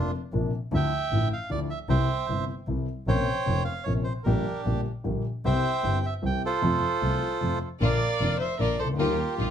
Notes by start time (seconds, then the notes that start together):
Already playing: F1 F2 C3 F3 A#3 D4 F4
0.33 A#1 A#2 C3 F3 A#3 D4
0.72 D2 D3 F3 A3 E4 E5
0.76 G5
1.10 A1 A2 D3 F3 A3 E4
1.33 F5
1.50 D2 D3 F3 A3 E4 D5
1.70 E5
1.88 C2 C3 E3 G3 E4 C5 E5 G5
2.28 G1 G2 C3 E3 G3 E4
2.67 C2 C3 E3 G3 E4
3.07 A#1 A#2 C3 F3 A#3 C#4 C5 C#5 G5
3.45 F1 F2 C3 F3 A#3 C#4
3.65 F5
3.84 A#1 A#2 C3 F3 A#3 C#4 C#5
4.04 C5
4.24 A#1 A#2 D3 G3 A#3 D4 G4 A#4
4.66 A#1 A#2 D3 G3 A#3 G4
5.04 A#1 A#2 D3 G3 A#3 G4
5.45 C2 C3 E3 G3 C4 G4 C5 E5 G5
5.83 G1 G2 E3 G3 C4 G4
6.06 E5
6.22 C2 C3 E3 G3 C4 G4 G5
6.45 F4 A4 C5
6.61 F2 C3 F3 A3 F4
7.01 C2 C3 F3 A3 F4
7.40 F2 C3 F3 A3 F4
7.81 A#1 A#2 D3 F3 A#3 D4 F4 A#4 D5 F5
7.85 D5
8.20 F1 F2 D3 F3 A#3 D4 F4
8.40 C5 E5
8.58 A#1 A#2 D3 F3 A#3 D4 F4 A#4 D5
8.79 C#2 A4 C5
8.84 C2 C#2
8.94 D2 G4
8.98 D#2 D#3 G3 A#3 D#4 F4 G4 A#4
9.38 A#1 A#2 D#3 G3 A#3 D#4 F4